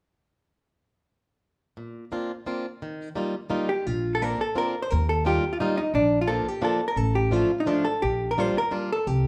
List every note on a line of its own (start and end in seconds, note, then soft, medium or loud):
1.77 2.04 A#2 medium
2.12 2.31 A#3 soft
2.12 2.31 C4 soft
2.12 2.31 D4 soft
2.12 2.31 F4 soft
2.46 2.65 A#3 medium
2.46 2.65 C4 soft
2.46 2.65 D4 soft
2.46 2.66 F4 soft
2.82 3.08 D#3 medium
3.15 3.34 G3 soft
3.15 3.34 A#3 medium
3.15 3.34 D#4 medium
3.15 3.35 F4 medium
3.50 3.69 G3 medium
3.50 3.69 A#3 medium
3.50 3.69 D#4 medium
3.50 3.69 F4 medium
3.69 3.87 G4 medium
3.87 4.33 A#1 medium
3.87 4.14 F4 medium
4.15 4.22 A4 medium
4.22 4.40 A#3 soft
4.22 4.40 C4 soft
4.22 4.41 D4 soft
4.22 4.41 F4 soft
4.22 4.41 A#4 medium
4.41 4.57 A4 medium
4.55 4.75 A#3 soft
4.55 4.74 C4 soft
4.55 4.75 D4 soft
4.55 4.75 F4 soft
4.55 4.82 A#4 medium
4.82 4.90 C5 medium
4.90 5.37 D#2 loud
4.90 5.09 A#4 medium
5.09 5.26 A4 medium
5.25 5.44 G3 soft
5.25 5.43 A#3 soft
5.25 5.44 D#4 soft
5.25 5.44 F4 medium
5.25 5.53 G4 medium
5.53 5.60 F4 medium
5.60 5.78 G3 medium
5.60 5.79 A#3 medium
5.60 5.76 D#4 medium
5.60 5.79 D#4 medium
5.60 5.79 F4 medium
5.78 5.94 D#4 medium
5.94 6.38 A#1 medium
5.94 6.21 D4 medium
6.21 6.29 F4 medium
6.28 6.46 F3 soft
6.28 6.46 A#3 soft
6.28 6.46 D4 soft
6.28 6.47 F4 medium
6.28 6.48 A4 medium
6.48 6.64 G4 medium
6.62 6.80 F3 medium
6.62 6.80 A#3 soft
6.62 6.80 D4 medium
6.62 6.80 F4 medium
6.62 6.87 A4 medium
6.88 6.97 A#4 medium
6.96 7.42 A1 medium
6.96 7.16 A4 medium
7.15 7.33 G4 medium
7.31 7.50 F3 medium
7.31 7.51 A3 soft
7.31 7.50 D4 soft
7.31 7.50 F4 medium
7.31 7.59 F4 medium
7.60 7.67 D#4 medium
7.66 7.85 F3 medium
7.66 7.86 A3 soft
7.66 7.86 D4 medium
7.66 7.86 D4 soft
7.66 7.86 F4 medium
7.85 8.03 A4 medium
8.02 8.48 A#1 medium
8.02 8.30 G4 medium
8.31 8.40 A#4 medium
8.38 8.56 G3 medium
8.38 8.56 A#3 soft
8.38 8.56 D4 soft
8.38 8.56 F4 medium
8.38 8.58 C5 medium
8.58 8.73 A#4 medium
8.71 8.90 G3 soft
8.71 8.90 A#3 medium
8.71 8.90 D4 soft
8.71 8.90 F4 medium
8.93 9.07 A4 medium
9.07 9.27 C2 medium
9.07 9.27 G4 medium